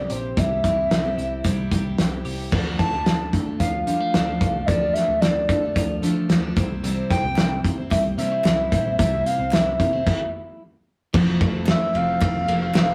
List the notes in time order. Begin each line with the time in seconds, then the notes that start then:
Already playing: C3 C4 E4 G4 D5
0.00 C4 E4
0.10 A#1 G4 C5, closed hi-hat
0.37 C2 C3 G3 C4 E4 G4 E5, kick, closed hi-hat
0.64 C2 G3 C4 E4 G4, kick, closed hi-hat
0.91 C2 C4, snare, closed hi-hat
1.04 C3 G3 C4 E4 G4
1.18 C2 E4, closed hi-hat
1.44 C2 C3 G3 C4 E4 G4, kick, closed hi-hat
1.71 C2 G3 C4 E4 G4, kick, closed hi-hat
1.98 C2 C4, snare, closed hi-hat
2.11 C4 E4 G4
2.25 C2 G4, open hi-hat
2.51 D2 D3 F3 D4 F4 A4, kick, crash
2.79 A3 A5, kick, snare, closed hi-hat
2.92 D2 D4 F4 A4
3.06 D2 D4, snare, closed hi-hat
3.33 D3 A3, kick, closed hi-hat
3.46 D4 F4 A4
3.59 D2 F3 F5, kick, closed hi-hat
3.86 D3 F3 G3 D4 F4 F5, closed hi-hat
3.90 A4
4.01 A3
4.14 D2 F3 D4 F4 A4, snare, closed hi-hat
4.40 C2 F3 A3 D4 F4 A4, kick, closed hi-hat
4.66 D2 D3 F3 D4 F4 A4 D5, kick, closed hi-hat
4.93 A3 E5, snare, closed hi-hat
5.08 D2 D4 F4 A4
5.21 D2 D4 D5, snare, closed hi-hat
5.49 D3 A3, kick, closed hi-hat
5.62 D4 F4 A4
5.75 D2 F3, kick, closed hi-hat
6.02 D3 F3 A3 D4 F4 A4, closed hi-hat
6.29 D2 F3 C4 D4 F4 A4, snare, closed hi-hat
6.43 D4
6.56 C2 C3 G3 C4 E4 C5, kick, closed hi-hat
6.84 C3 G3 C4 E4 C5, closed hi-hat
7.10 C4 G5, kick, snare, closed hi-hat
7.24 C2 C4 E4 C5
7.36 C2 E4, snare, clap, closed hi-hat
7.64 C3 C4, kick, closed hi-hat
7.78 C4 E4 C5
7.91 C2 G3 E5, kick, clap, closed hi-hat
8.18 C3 G3 A#3 C4 E4 C5 E5, closed hi-hat
8.32 C4
8.44 C2 G3 C4 E4 C5, snare, clap, closed hi-hat
8.71 A#1 G3 C4 E4 C5, kick, closed hi-hat
8.99 C2 C3 G3 C4 E4 C5 E5, kick, closed hi-hat
9.26 C4 F5, closed hi-hat
9.39 C2 C4 E4 C5
9.51 C2 E4 E5, snare, clap, closed hi-hat
9.80 C3 A#3, kick, closed hi-hat
9.93 C4 E4 C5
10.07 kick, crash
11.13 F1 F3 C4 E4 A4, kick, crash
11.40 F1 F3 A3 E4 A4, kick, ride
11.66 E4 E5 E6, snare, clap, ride
11.94 F1 F3 C4 A4 F5 F6, ride
12.21 F1, kick, clap, ride
12.48 F1 F3 A#3 C4 E4 A4, ride
12.62 C4
12.74 F1 F3 C4 E4 A4, snare, clap, ride